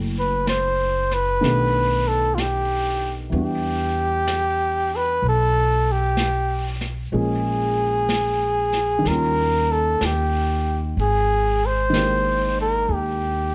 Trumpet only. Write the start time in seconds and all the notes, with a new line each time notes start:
0.19 B4
0.49 C5
1.14 B4
2.08 A4
2.35 F4
2.40 G4
3.36 G4
4.96 B4
5.28 A4
5.92 G4
7.17 G#4
9.08 A#4
9.72 A4
10.05 G4
11.01 G#4
11.66 C5
12.61 A#4
12.93 G4